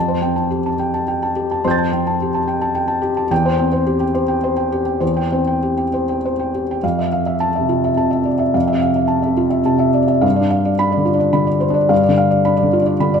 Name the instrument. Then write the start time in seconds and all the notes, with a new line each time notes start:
felt piano
Already playing: F2 A5
0.08 C5
0.22 C4 G5
0.36 A5
0.51 G4
0.66 A5
0.79 G5
0.94 A5
1.08 G5
1.23 A5
1.36 G4
1.51 A5
1.65 F2 C5 C6 G6
1.71 A6
1.78 A5
1.92 C4 G5
2.07 A5
2.22 G4
2.34 A5
2.48 G5
2.62 A5
2.75 G5
2.88 A5
3.02 G4
3.17 A5
3.31 E2 G5
3.46 C5
3.59 C4 G5
3.73 C5
3.87 G4
4.00 G5
4.14 C5
4.28 G5
4.44 C5
4.57 G5
4.72 G4
4.85 G5
5.00 E2 C5
5.17 G5
5.32 C4 C5
5.47 G5
5.63 G4
5.77 G5
5.94 C5
6.09 G5
6.25 C5
6.40 G5
6.55 G4
6.71 G5
6.83 F2 F5
6.99 E5
7.12 F5
7.26 E5
7.40 A5
7.55 C3 E5
7.69 F4
7.84 E5
7.97 C3 A5
8.11 E5
8.25 D5
8.39 E5
8.54 F2 F5
8.68 E5
8.72 C3
8.82 F5
8.96 E5
9.08 A5
9.22 C3 E5
9.37 F4
9.50 E5
9.65 C3 A5
9.79 E5
9.94 D5
10.08 E5
10.21 G2 F5
10.36 D5
10.40 D4
10.51 F5
10.65 D5
10.79 D4 B5
10.92 D5
10.97 D3
11.05 F4
11.14 D4
11.20 D5
11.33 D3 B5
11.47 D5
11.60 C5
11.70 D4
11.74 D5
11.89 G2 F5
12.03 D5
12.09 D3
12.18 F5
12.31 D5
12.45 D4 B5
12.57 D5
12.63 D3
12.73 F4
12.82 D4
12.86 D5
13.00 D3 B5
13.14 D5